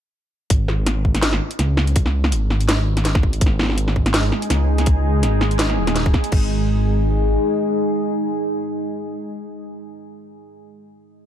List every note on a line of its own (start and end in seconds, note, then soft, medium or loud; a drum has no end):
0.50 1.40 G#1 loud
0.50 kick loud
0.50 closed hi-hat medium
0.68 snare medium
0.86 snare medium
0.86 closed hi-hat medium
1.05 kick medium
1.15 snare medium
1.15 closed hi-hat soft
1.23 snare loud
1.23 closed hi-hat medium
1.33 snare medium
1.51 closed hi-hat soft
1.59 2.33 C#2 medium
1.59 snare medium
1.59 closed hi-hat medium
1.77 snare medium
1.87 closed hi-hat soft
1.96 kick loud
1.96 closed hi-hat medium
2.06 snare medium
2.24 snare medium
2.32 3.40 G#1 medium
2.32 closed hi-hat medium
2.50 snare medium
2.61 closed hi-hat soft
2.69 snare loud
2.69 snare medium
2.69 closed hi-hat medium
2.97 snare medium
2.97 closed hi-hat soft
3.05 snare medium
3.05 closed hi-hat medium
3.15 kick loud
3.15 snare medium
3.23 kick medium
3.33 closed hi-hat soft
3.41 4.31 G#1 loud
3.41 6.29 G#3 medium
3.41 6.29 D#4 medium
3.41 6.29 G#4 medium
3.41 kick loud
3.41 closed hi-hat medium
3.46 snare medium
3.59 snare medium
3.63 snare medium
3.66 snare soft
3.70 snare soft
3.72 snare soft
3.75 snare soft
3.75 closed hi-hat medium
3.88 snare medium
3.96 kick medium
4.06 snare medium
4.06 closed hi-hat soft
4.14 snare loud
4.14 closed hi-hat medium
4.32 snare medium
4.42 closed hi-hat soft
4.50 5.25 C#2 medium
4.50 snare medium
4.50 closed hi-hat medium
4.78 snare medium
4.78 closed hi-hat soft
4.86 kick loud
4.86 closed hi-hat medium
5.23 5.59 G#1 medium
5.23 snare soft
5.23 closed hi-hat medium
5.41 snare medium
5.51 closed hi-hat soft
5.59 5.79 G#1 loud
5.59 snare loud
5.59 closed hi-hat medium
5.69 snare soft
5.78 6.13 D#1 medium
5.87 snare medium
5.87 closed hi-hat soft
5.96 snare medium
5.96 closed hi-hat medium
6.06 kick loud
6.14 kick medium
6.14 snare medium
6.24 closed hi-hat soft
6.32 7.37 G#1 loud
6.32 9.55 G#3 medium
6.32 9.55 D#4 medium
6.32 9.55 G#4 medium
6.32 kick loud
6.32 crash medium